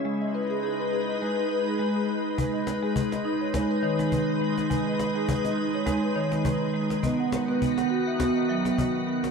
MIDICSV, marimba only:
0, 0, Header, 1, 2, 480
1, 0, Start_track
1, 0, Key_signature, 5, "minor"
1, 0, Tempo, 581959
1, 46, Time_signature, 4, 2, 24, 8
1, 7678, End_track
2, 0, Start_track
2, 0, Title_t, "Marimba"
2, 0, Program_c, 0, 12
2, 42, Note_on_c, 0, 56, 71
2, 179, Note_on_c, 0, 75, 54
2, 285, Note_on_c, 0, 71, 55
2, 413, Note_on_c, 0, 68, 61
2, 512, Note_off_c, 0, 68, 0
2, 522, Note_on_c, 0, 68, 56
2, 526, Note_off_c, 0, 75, 0
2, 644, Note_off_c, 0, 71, 0
2, 654, Note_on_c, 0, 71, 53
2, 752, Note_off_c, 0, 68, 0
2, 762, Note_on_c, 0, 68, 59
2, 893, Note_on_c, 0, 75, 47
2, 970, Note_off_c, 0, 56, 0
2, 991, Note_off_c, 0, 71, 0
2, 1001, Note_on_c, 0, 71, 63
2, 1004, Note_off_c, 0, 68, 0
2, 1006, Note_on_c, 0, 56, 76
2, 1225, Note_off_c, 0, 56, 0
2, 1237, Note_off_c, 0, 71, 0
2, 1243, Note_off_c, 0, 75, 0
2, 1247, Note_on_c, 0, 71, 50
2, 1378, Note_on_c, 0, 68, 59
2, 1481, Note_on_c, 0, 56, 73
2, 1606, Note_off_c, 0, 68, 0
2, 1616, Note_on_c, 0, 68, 45
2, 1618, Note_off_c, 0, 71, 0
2, 1721, Note_on_c, 0, 63, 53
2, 1929, Note_off_c, 0, 56, 0
2, 1960, Note_on_c, 0, 71, 58
2, 1962, Note_off_c, 0, 63, 0
2, 1962, Note_on_c, 0, 56, 64
2, 1964, Note_off_c, 0, 68, 0
2, 2091, Note_on_c, 0, 75, 56
2, 2203, Note_off_c, 0, 56, 0
2, 2330, Note_on_c, 0, 56, 63
2, 2330, Note_on_c, 0, 68, 59
2, 2334, Note_off_c, 0, 71, 0
2, 2441, Note_off_c, 0, 75, 0
2, 2573, Note_off_c, 0, 56, 0
2, 2577, Note_on_c, 0, 75, 53
2, 2680, Note_off_c, 0, 68, 0
2, 2680, Note_on_c, 0, 63, 67
2, 2814, Note_on_c, 0, 73, 47
2, 2912, Note_off_c, 0, 63, 0
2, 2921, Note_on_c, 0, 56, 75
2, 2922, Note_on_c, 0, 63, 61
2, 2924, Note_off_c, 0, 75, 0
2, 3056, Note_on_c, 0, 71, 59
2, 3141, Note_off_c, 0, 56, 0
2, 3154, Note_off_c, 0, 73, 0
2, 3156, Note_on_c, 0, 51, 77
2, 3162, Note_off_c, 0, 63, 0
2, 3163, Note_on_c, 0, 73, 51
2, 3296, Note_on_c, 0, 56, 66
2, 3395, Note_off_c, 0, 71, 0
2, 3404, Note_on_c, 0, 71, 54
2, 3535, Note_off_c, 0, 73, 0
2, 3536, Note_off_c, 0, 56, 0
2, 3642, Note_on_c, 0, 56, 65
2, 3776, Note_off_c, 0, 71, 0
2, 3846, Note_off_c, 0, 51, 0
2, 3869, Note_off_c, 0, 56, 0
2, 3879, Note_on_c, 0, 56, 81
2, 3882, Note_on_c, 0, 71, 57
2, 4016, Note_on_c, 0, 75, 56
2, 4243, Note_off_c, 0, 56, 0
2, 4253, Note_on_c, 0, 56, 69
2, 4253, Note_on_c, 0, 68, 52
2, 4254, Note_off_c, 0, 71, 0
2, 4363, Note_off_c, 0, 75, 0
2, 4492, Note_on_c, 0, 75, 52
2, 4494, Note_off_c, 0, 56, 0
2, 4601, Note_off_c, 0, 68, 0
2, 4603, Note_on_c, 0, 63, 63
2, 4737, Note_on_c, 0, 73, 54
2, 4835, Note_off_c, 0, 63, 0
2, 4837, Note_on_c, 0, 56, 79
2, 4841, Note_off_c, 0, 75, 0
2, 4844, Note_on_c, 0, 63, 60
2, 4975, Note_on_c, 0, 71, 51
2, 5059, Note_off_c, 0, 56, 0
2, 5069, Note_off_c, 0, 73, 0
2, 5078, Note_on_c, 0, 51, 76
2, 5079, Note_on_c, 0, 73, 61
2, 5083, Note_off_c, 0, 63, 0
2, 5209, Note_on_c, 0, 56, 68
2, 5311, Note_off_c, 0, 71, 0
2, 5321, Note_on_c, 0, 71, 61
2, 5452, Note_off_c, 0, 56, 0
2, 5453, Note_off_c, 0, 73, 0
2, 5558, Note_on_c, 0, 56, 62
2, 5694, Note_off_c, 0, 71, 0
2, 5767, Note_off_c, 0, 51, 0
2, 5798, Note_on_c, 0, 59, 69
2, 5800, Note_off_c, 0, 56, 0
2, 5800, Note_on_c, 0, 75, 65
2, 5935, Note_on_c, 0, 78, 52
2, 6040, Note_off_c, 0, 59, 0
2, 6173, Note_on_c, 0, 59, 64
2, 6173, Note_on_c, 0, 71, 57
2, 6174, Note_off_c, 0, 75, 0
2, 6283, Note_off_c, 0, 78, 0
2, 6413, Note_on_c, 0, 78, 59
2, 6414, Note_off_c, 0, 59, 0
2, 6517, Note_on_c, 0, 66, 63
2, 6521, Note_off_c, 0, 71, 0
2, 6653, Note_on_c, 0, 76, 46
2, 6749, Note_off_c, 0, 66, 0
2, 6758, Note_on_c, 0, 66, 66
2, 6762, Note_off_c, 0, 78, 0
2, 6764, Note_on_c, 0, 59, 76
2, 6894, Note_on_c, 0, 75, 54
2, 6983, Note_off_c, 0, 59, 0
2, 6992, Note_off_c, 0, 76, 0
2, 7001, Note_off_c, 0, 66, 0
2, 7002, Note_on_c, 0, 76, 52
2, 7005, Note_on_c, 0, 54, 70
2, 7135, Note_on_c, 0, 59, 66
2, 7232, Note_off_c, 0, 75, 0
2, 7242, Note_on_c, 0, 75, 51
2, 7375, Note_off_c, 0, 59, 0
2, 7375, Note_off_c, 0, 76, 0
2, 7483, Note_on_c, 0, 59, 59
2, 7615, Note_off_c, 0, 75, 0
2, 7678, Note_off_c, 0, 54, 0
2, 7678, Note_off_c, 0, 59, 0
2, 7678, End_track
0, 0, End_of_file